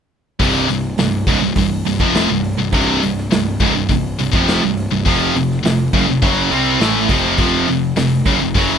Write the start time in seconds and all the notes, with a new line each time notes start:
0.40 C1 C2 G2 C3, kick, open hi-hat
0.69 C1 C2 G2, open hi-hat
0.98 C1 C2 G2, snare, open hi-hat
1.26 C#1 C#2 G#2, kick, open hi-hat
1.42 C1 C2 G2
1.56 C1 C2 G2, kick, open hi-hat
1.85 C1 C2 G2, open hi-hat
1.99 F1 F2 C3 F3, kick
2.15 snare, open hi-hat
2.30 C1 C2 G2
2.44 open hi-hat
2.59 C1 C2 G2
2.73 C1 C2 G2 C3, kick, open hi-hat
3.02 C1 C2 G2, open hi-hat
3.18 snare
3.31 C1 C2 G2, snare, open hi-hat
3.60 C#1 C#2 G#2, kick, open hi-hat
3.74 C1 C2 G2
3.89 C1 C2 G2, kick, open hi-hat
4.18 C1 C2 G2, open hi-hat
4.31 F1 F2 C3 F3, kick
4.48 snare, open hi-hat
4.63 C1 C2 G2
4.77 open hi-hat
4.91 C1 C2 G2
5.05 F1 F2 C3 F3, kick, open hi-hat
5.34 F1 F2 C3, open hi-hat
5.52 snare
5.63 F1 F2 C3, snare, open hi-hat
5.93 F#1 F#2 C#3, kick, open hi-hat
6.08 F1 F2 C3
6.22 F#1 F#2 C#3 F#3, kick, open hi-hat
6.51 C2 C3 G3 C4, open hi-hat
6.80 A1 A2 E3 A3, snare, open hi-hat
7.08 F1 F2 C3 F3, kick, open hi-hat
7.38 F1 F2 C3 F3, kick, open hi-hat
7.67 F1 F2 C3, open hi-hat
7.96 F1 F2 C3, snare, open hi-hat
8.26 F#1 F#2 C#3, kick, open hi-hat
8.41 F1 F2 C3
8.54 F#1 F#2 C#3 F#3, kick, open hi-hat